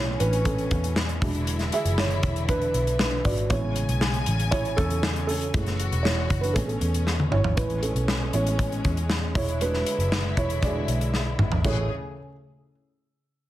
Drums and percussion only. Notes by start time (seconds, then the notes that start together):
0.20 closed hi-hat
0.33 closed hi-hat
0.45 kick, closed hi-hat
0.58 closed hi-hat
0.71 kick, closed hi-hat
0.84 closed hi-hat
0.96 snare
1.09 closed hi-hat
1.22 kick, open hi-hat
1.35 closed hi-hat
1.47 closed hi-hat
1.59 snare, closed hi-hat
1.72 closed hi-hat
1.85 closed hi-hat
1.98 snare
2.11 closed hi-hat
2.23 kick, closed hi-hat
2.36 closed hi-hat
2.49 kick, closed hi-hat
2.62 closed hi-hat
2.74 closed hi-hat
2.87 closed hi-hat
2.99 snare
3.25 kick, open hi-hat
3.37 closed hi-hat
3.50 kick, closed hi-hat
3.76 closed hi-hat
3.89 closed hi-hat
4.01 snare
4.14 closed hi-hat
4.26 closed hi-hat
4.40 closed hi-hat
4.52 kick, closed hi-hat
4.65 closed hi-hat
4.78 kick, closed hi-hat
4.90 closed hi-hat
5.03 snare
5.16 closed hi-hat
5.29 open hi-hat
5.42 closed hi-hat
5.54 kick, closed hi-hat
5.66 snare, closed hi-hat
5.80 closed hi-hat
5.92 closed hi-hat
6.05 snare
6.30 kick, closed hi-hat
6.44 closed hi-hat
6.56 kick, closed hi-hat
6.69 closed hi-hat
6.81 closed hi-hat
6.94 closed hi-hat
7.07 snare
7.20 high tom
7.32 mid tom
7.44 floor tom
7.57 kick, closed hi-hat
7.70 closed hi-hat
7.83 closed hi-hat
7.96 closed hi-hat
8.08 snare
8.33 closed hi-hat
8.47 closed hi-hat
8.59 kick, closed hi-hat
8.72 closed hi-hat
8.85 kick, closed hi-hat
8.97 closed hi-hat
9.10 snare
9.35 kick, open hi-hat
9.48 closed hi-hat
9.61 closed hi-hat
9.74 snare
9.86 closed hi-hat
10.00 closed hi-hat
10.12 snare
10.37 kick, closed hi-hat
10.50 closed hi-hat
10.63 kick, closed hi-hat
10.88 closed hi-hat
11.01 closed hi-hat
11.14 snare
11.39 mid tom
11.52 floor tom
11.64 kick, crash